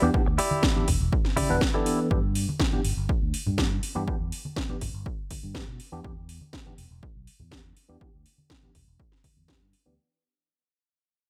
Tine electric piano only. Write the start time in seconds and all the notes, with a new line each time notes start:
0.02 E3 B3 D4 G4
0.14 E3 B3 D4 G4
0.76 E3 B3 D4 G4
1.50 E3 B3 D4 B4
1.74 E3 B3 D4 A4
2.10 E3 B3 D4 G4
2.72 E3 B3 D4 G4
3.58 E3 B3 D4 G4
3.95 E3 B3 D4 G4
4.07 E3 B3 D4 G4
4.69 E3 B3 D4 G4
5.54 E3 B3 D4 G4
5.92 E3 B3 D4 G4
6.04 B3 D4 G4
6.66 E3 B3 D4 G4
7.52 E3 B3 D4 G4
7.89 E3 B3 D4 G4
8.01 B3 G4
8.63 E3 B3 D4 G4
9.48 E3 B3 D4 G4
9.86 E3 B3 D4 G4